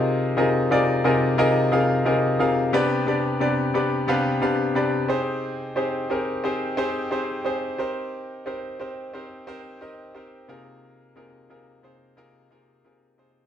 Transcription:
X:1
M:4/4
L:1/8
Q:1/4=89
K:Bbmix
V:1 name="Grand piano"
[C,EFABe] [C,EFABe] [C,EFABd] [C,EFABe] [C,EFABe] [C,EFABf] [C,EFABe] [C,EFABf] | [C,=B,DG=Bd] [C,B,DGBd] [C,B,DGBd] [C,B,DGBd] [C,B,DGBf] [C,B,DGBf] [C,B,DGBd] [CEGAc]- | [CEGAc] [CEGAc] [CEGAB] [CEGAc] [CEGAc] [CEGAc] [CEGAc] [CEGBc]- | [CEGBc] [CEGBc] [CEGBc] [CEGBc] [CEGBc] [CEGBe] [CEGBc] [C,B,EFAB]- |
[C,B,EFAB] [C,B,EFAB] [C,B,EFAB] [C,B,EFAc] [C,B,EFAB] [C,B,EFAB] [C,B,EFAB] [C,B,EFAc] |]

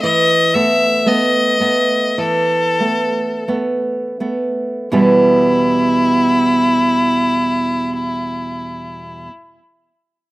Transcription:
X:1
M:4/4
L:1/8
Q:1/4=44
K:Em
V:1 name="Violin"
^d e d2 A2 z2 | E8 |]
V:2 name="Nylon-string guitar"
E, [A,B,] [A,B,] [A,B,] E, [A,B,] [A,B,] [A,B,] | [E,,B,,G,B,EG]8 |]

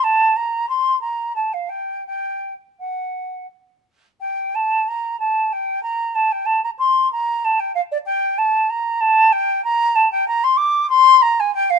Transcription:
X:1
M:3/4
L:1/16
Q:1/4=94
K:Gm
V:1 name="Flute"
a2 b2 c'2 b2 a f g2 | g3 z ^f4 z4 | g2 a2 b2 a2 g2 b2 | a g a b c'2 b2 a g f d |
g2 a2 b2 a2 g2 b2 | a g b c' d'2 c'2 b _a g f |]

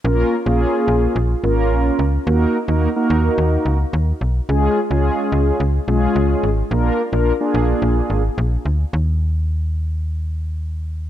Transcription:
X:1
M:4/4
L:1/16
Q:1/4=108
K:Bbphr
V:1 name="Analog polysynth"
[B,DFB]2 z [B,DFA]4- [B,DFA] z2 [B,DFB]4 z2 | [B,EGB]2 z [B,EGB] z [B,EGB]6 z4 z | [A,DFA]2 z [A,DFA]4- [A,DFA] z2 [A,DFA]4 z2 | [B,=DFB]2 z [B,DFB] z [B,DFA]6 z4 z |
z16 |]
V:2 name="FM bass" clef=bass
B,,,2 z B,,,2 z B,,,2 B,,,2 A,,,2 B,,,2 D,,2 | E,,2 z E,,2 z E,,2 E,,2 D,,2 E,,2 C,,2 | D,,2 z D,,2 z D,,2 D,,2 C,,2 D,,2 A,,,2 | B,,,2 z B,,,2 z B,,,2 B,,,2 A,,,2 B,,,2 =D,,2 |
E,,16 |]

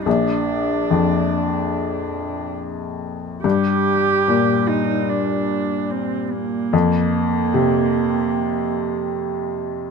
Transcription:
X:1
M:4/4
L:1/8
Q:1/4=73
K:Gm
V:1 name="Cello"
D6 z2 | G3 E D2 C B,- | B,6- B, z |]
V:2 name="Felt piano" clef=bass
B,,,2 F,,6 | G,,2 B,,6 | F,,2 C,6 |]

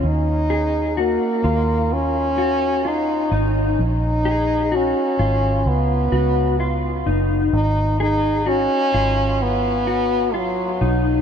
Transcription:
X:1
M:4/4
L:1/16
Q:1/4=64
K:G#dor
V:1 name="Clean electric guitar"
z2 G2 F2 E4 F2 E2 D2 | z2 G2 F2 E4 F2 E2 D2 | z2 G2 F2 E4 F2 E2 D2 |]
V:2 name="French horn"
D4 A,4 C4 D3 z | D4 C4 B,6 z2 | D2 D2 C4 B,4 F,3 z |]
V:3 name="Fingered electric bass" clef=bass
D,,4- D,, z D,,8 G,,,2 | A,,,4- A,,, z G,,,2 C,,2 C,,4 F,,,2 | G,,,4- G,,, z G,,,8 B,,,2 |]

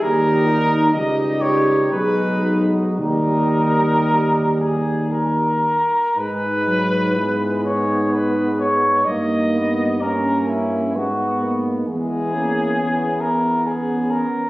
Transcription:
X:1
M:3/4
L:1/8
Q:1/4=63
K:G#m
V:1 name="Flugelhorn"
A2 d c B z | A3 G A2 | B3 c B c | d2 A E F z |
G3 A G A |]
V:2 name="French horn section"
=G D G2 ^G F | =G4- G z | D2 E D3 | D2 C2 D2 |
E2 E2 C2 |]
V:3 name="Trombone section"
D2 D2 D2 | D4- D z | G, F, G,4 | A, B, C2 B,2 |
G, A, B,4 |]
V:4 name="Trombone"
=G,2 G,2 ^G,2 | =G,4- G, z | z2 B,4 | A,2 A,2 B, A, |
B, C2 z B,2 |]
V:5 name="Tuba" clef=bass
D,,2 C,,2 B,,,2 | D,,4- D,, z | G,,6 | =G,,4 ^G,,2 |
E,,4- E,, z |]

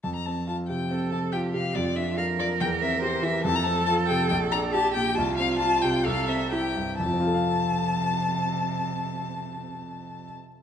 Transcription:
X:1
M:4/4
L:1/16
Q:1/4=137
K:F
V:1 name="Violin"
a b a2 a2 g4 a2 g2 f2 | d2 e2 f2 d2 g2 e2 c2 e2 | a b a2 a2 g2 g2 b2 a2 g2 | a2 f2 a2 g2 f2 e2 g4 |
a16- | a16 |]
V:2 name="Cello"
z8 A4 G4 | F4 B12 | A12 G4 | F8 A4 G2 z2 |
C,16- | C,16 |]
V:3 name="Grand piano"
F,,2 C2 F2 C,2 C2 C,2 F2 C,2 | F,,2 D2 F2 F,2 E,,2 C2 G2 E,2 | F,,2 C2 F2 C,2 B,,,2 D2 G2 B,,2 | C,,2 C2 F2 C,2 C,,2 C2 E2 G,,2 |
[F,,F,CFAf]16- | [F,,F,CFAf]16 |]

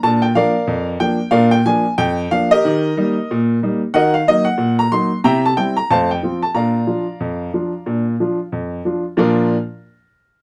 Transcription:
X:1
M:2/4
L:1/16
Q:"Swing 16ths" 1/4=92
K:Bb
V:1 name="Upright piano"
a g [Bdf]4 g2 | [Bdf] g _a2 g2 f [GBe]- | [GBe]6 z2 | [Be_g] f e g2 b c'2 |
[=egb] a g b [cfa] g2 a | [dfb]8- | [dfb]4 z4 | [B,,F,DFBd]2 z6 |]
V:2 name="Upright piano"
[B,,D]2 [F,B,D]2 F,,2 [F,B,D]2 | [B,,D]2 [F,B,D]2 F,,2 [F,B,D]2 | [E,G]2 [G,B,E]2 B,,2 [G,B,E]2 | [E,_G]2 [_G,B,E]2 B,,2 [G,B,E]2 |
[C,=E]2 [G,CE]2 [F,,A,]2 [F,CF]2 | [B,,D]2 [F,DF]2 F,,2 [F,DF]2 | [B,,D]2 [F,DF]2 F,,2 [F,DF]2 | z8 |]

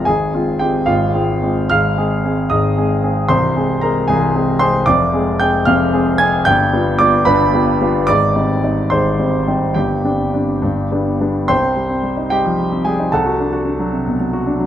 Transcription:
X:1
M:6/8
L:1/16
Q:3/8=75
K:Ab
V:1 name="Grand piano"
[Aa]4 [Gg]2 [Ff]6 | [ff']6 [ee']6 | [cc']4 [Bb]2 [Aa]4 [cc']2 | [K:Cm] [dd']4 [gg']2 [ff']4 [aa']2 |
[gg']4 [dd']2 [=B=b]4 z2 | [dd']6 [cc']6 | [Gg]8- [Gg]2 z2 | [cgc']6 [Geg]4 [Aa]2 |
[=A^f=a]8- [Afa]2 z2 |]
V:2 name="Grand piano" clef=bass
[A,,,A,,]2 [A,CF]2 [A,CF]2 [A,,,A,,]2 [A,CF]2 [A,CF]2 | [A,,,A,,]2 [A,CA]2 [A,CA]2 [A,,,A,,]2 [A,CA]2 [A,CA]2 | [C,,,C,,]2 [A,CA]2 [A,CA]2 [C,,,C,,]2 [A,CA]2 [A,CA]2 | [K:Cm] [F,,,F,,]2 [A,CA]2 [A,CA]2 [F,,,F,,]2 [A,CA]2 [A,CA]2 |
[G,,,G,,]2 [G,=B,F]2 [G,B,F]2 [G,,,G,,]2 [G,B,F]2 [G,B,F]2 | [A,,,A,,]2 [G,CE]2 [G,CE]2 [A,,,A,,]2 [G,CE]2 [G,CE]2 | [G,,,G,,]2 [G,CD]2 [G,CD]2 [G,,,G,,]2 [G,=B,D]2 [G,B,D]2 | C,, C G, C G, E G, F, G, C G, E |
C,, ^F D F D ^F, C, =B,, F, F D F, |]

